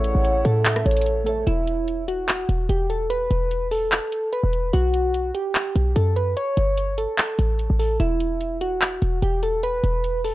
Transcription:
Already playing: A1 C#3 A3 E4 A4 C#5 E5 F#5
0.04 closed hi-hat
0.15 A1
0.24 closed hi-hat
0.45 A2 A4, closed hi-hat
0.65 E5, clap, closed hi-hat
0.76 cross-stick
0.86 A1 C#5, closed hi-hat
0.91 closed hi-hat
0.97 closed hi-hat
1.01 closed hi-hat
1.06 closed hi-hat
1.24 A3 A4 C#5, closed hi-hat
1.29 E5
1.47 E1 E4, closed hi-hat
1.67 closed hi-hat
1.88 closed hi-hat
2.08 F#4, closed hi-hat
2.29 clap, closed hi-hat
2.49 E1, closed hi-hat
2.69 E1 G4, closed hi-hat
2.90 A4, closed hi-hat
3.10 B4, closed hi-hat
3.31 E1, closed hi-hat
3.51 closed hi-hat
3.71 A4, open hi-hat
3.92 clap, closed hi-hat
4.12 closed hi-hat
4.33 B4, closed hi-hat
4.43 E1
4.53 closed hi-hat
4.73 B1 F#4, closed hi-hat
4.94 closed hi-hat
5.14 closed hi-hat
5.35 G4, closed hi-hat
5.55 clap, closed hi-hat
5.75 B1, closed hi-hat
5.96 F#2 A4, closed hi-hat
6.16 B4, closed hi-hat
6.37 C#5, closed hi-hat
6.57 G1, closed hi-hat
6.77 closed hi-hat
6.98 A4, closed hi-hat
7.18 clap, closed hi-hat
7.39 A1, closed hi-hat
7.59 closed hi-hat
7.70 A1
7.79 A4, open hi-hat
8.00 E1 E4, closed hi-hat
8.20 closed hi-hat
8.41 closed hi-hat
8.61 F#4, closed hi-hat
8.82 clap, closed hi-hat
9.02 E1, closed hi-hat
9.22 E1 G4, closed hi-hat
9.43 A4, closed hi-hat
9.63 B4, closed hi-hat
9.84 E1, closed hi-hat
10.04 closed hi-hat
10.24 A4, open hi-hat

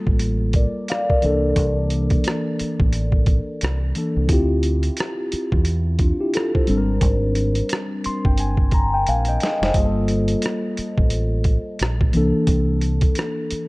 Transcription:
Already playing: G3 A#3 F4 A4
0.07 A1, kick
0.19 closed hi-hat
0.53 A#4 D5, kick, closed hi-hat
0.88 D5 F5, cross-stick, closed hi-hat
1.10 A#4 D5, kick
1.22 C2 E3 A#3 D4, closed hi-hat
1.26 A4
1.56 C2, kick, closed hi-hat
1.90 closed hi-hat
2.10 kick, closed hi-hat
2.24 cross-stick, closed hi-hat
2.59 muted fingered electric bass stroke, closed hi-hat
2.80 A1, kick
2.93 closed hi-hat
3.12 kick
3.26 kick, closed hi-hat
3.61 C2, cross-stick, closed hi-hat
3.95 E3 A#3 D4 A4, closed hi-hat
4.17 C2
4.29 D2 C4 E4 F4 G4, kick, closed hi-hat
4.63 closed hi-hat
4.83 closed hi-hat
4.97 cross-stick, closed hi-hat
5.32 muted fingered electric bass stroke, closed hi-hat
5.52 E2, kick
5.65 closed hi-hat
5.99 D4 F4, kick, closed hi-hat
6.21 E4 G4
6.34 F4 A4, cross-stick, closed hi-hat
6.55 A4 C5, kick
6.67 G#1 G3 C4 D4 A4, closed hi-hat
6.77 A#4
7.01 G#1, kick, closed hi-hat
7.35 closed hi-hat
7.55 closed hi-hat
7.69 cross-stick, closed hi-hat
8.04 C6, muted fingered electric bass stroke, closed hi-hat
8.25 G1 G5, kick
8.38 G#5, closed hi-hat
8.57 kick
8.71 A#5, kick, closed hi-hat
8.94 G5
9.07 A#1 F5 G#5, closed hi-hat
9.25 D#5 G5, closed hi-hat
9.40 D#5, snare, closed hi-hat
9.62 F1 C5 D#5, snare
9.74 G1 G3 A#3 F4, kick, closed hi-hat
9.79 G#4
9.85 A4
10.08 closed hi-hat
10.28 closed hi-hat
10.42 cross-stick, closed hi-hat
10.77 muted fingered electric bass stroke, closed hi-hat
10.98 A1, kick
11.10 closed hi-hat
11.44 kick, closed hi-hat
11.79 A#1, cross-stick, closed hi-hat
12.01 kick
12.13 C2 E3 A#3 D4, closed hi-hat
12.17 A4
12.47 C2, kick, closed hi-hat
12.81 closed hi-hat
13.01 kick, closed hi-hat
13.15 cross-stick, closed hi-hat
13.51 muted fingered electric bass stroke, closed hi-hat

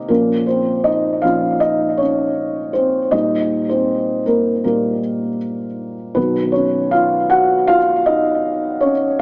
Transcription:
Already playing: C3 D#3 A#3 D#4 A#4 D#5
0.08 A#2 F3 A#3 C#4 A#4
0.47 C4 C5
0.84 D#4 D#5
1.22 A#2 F3 C#4 F4 F5
1.60 D#4 D#5
1.97 C#4 C#5
2.73 C4 C5
3.11 A#2 G3 A#3 D#4 D#5
3.69 C4 C5
4.26 A#3 A#4
4.64 A#2 G3 A#3 A#4
6.15 B2 D#3 F#3 B3 B4
6.52 C#4 C#5
6.91 F4 F5
7.30 F#4 F#5
7.67 F4 F5
8.06 D#4 D#5
8.81 C#4 C#5

